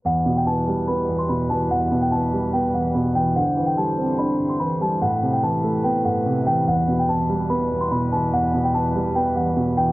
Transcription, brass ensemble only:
0, 0, Header, 1, 2, 480
1, 0, Start_track
1, 0, Key_signature, 1, "minor"
1, 0, Tempo, 413793
1, 60, Time_signature, 4, 2, 24, 8
1, 11510, End_track
2, 0, Start_track
2, 0, Title_t, "Brass ensemble"
2, 0, Program_c, 0, 61
2, 60, Note_on_c, 0, 47, 78
2, 60, Note_on_c, 0, 55, 70
2, 61, Note_on_c, 0, 64, 69
2, 61, Note_on_c, 0, 71, 90
2, 3861, Note_off_c, 0, 47, 0
2, 3862, Note_off_c, 0, 71, 0
2, 3901, Note_on_c, 0, 72, 87
2, 3902, Note_on_c, 0, 50, 81
2, 5774, Note_off_c, 0, 55, 0
2, 5801, Note_off_c, 0, 72, 0
2, 5802, Note_off_c, 0, 50, 0
2, 5822, Note_on_c, 0, 57, 73
2, 5823, Note_on_c, 0, 48, 81
2, 5823, Note_on_c, 0, 71, 88
2, 7722, Note_off_c, 0, 48, 0
2, 7722, Note_off_c, 0, 57, 0
2, 7722, Note_off_c, 0, 71, 0
2, 7738, Note_on_c, 0, 47, 76
2, 7739, Note_on_c, 0, 55, 70
2, 7740, Note_on_c, 0, 71, 89
2, 11510, Note_off_c, 0, 47, 0
2, 11510, Note_off_c, 0, 55, 0
2, 11510, Note_off_c, 0, 64, 0
2, 11510, Note_off_c, 0, 71, 0
2, 11510, End_track
0, 0, End_of_file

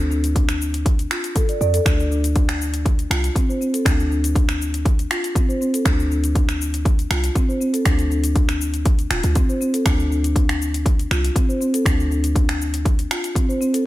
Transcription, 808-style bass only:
0, 0, Header, 1, 2, 480
1, 0, Start_track
1, 0, Key_signature, -1, "minor"
1, 0, Tempo, 500000
1, 1785, Time_signature, 4, 2, 24, 8
1, 13307, End_track
2, 0, Start_track
2, 0, Title_t, "808-style bass"
2, 0, Program_c, 0, 38
2, 0, Note_on_c, 0, 38, 94
2, 1020, Note_off_c, 0, 38, 0
2, 1545, Note_on_c, 0, 41, 83
2, 1730, Note_off_c, 0, 41, 0
2, 1783, Note_on_c, 0, 38, 101
2, 2940, Note_off_c, 0, 38, 0
2, 2982, Note_on_c, 0, 36, 88
2, 3168, Note_off_c, 0, 36, 0
2, 3702, Note_on_c, 0, 38, 91
2, 4859, Note_off_c, 0, 38, 0
2, 5622, Note_on_c, 0, 38, 99
2, 6780, Note_off_c, 0, 38, 0
2, 6823, Note_on_c, 0, 36, 91
2, 7009, Note_off_c, 0, 36, 0
2, 7542, Note_on_c, 0, 38, 93
2, 8699, Note_off_c, 0, 38, 0
2, 8744, Note_on_c, 0, 26, 82
2, 8840, Note_off_c, 0, 26, 0
2, 8870, Note_on_c, 0, 38, 96
2, 9050, Note_off_c, 0, 38, 0
2, 9464, Note_on_c, 0, 38, 95
2, 10620, Note_off_c, 0, 38, 0
2, 10667, Note_on_c, 0, 36, 90
2, 10851, Note_off_c, 0, 36, 0
2, 11383, Note_on_c, 0, 38, 96
2, 12540, Note_off_c, 0, 38, 0
2, 13307, End_track
0, 0, End_of_file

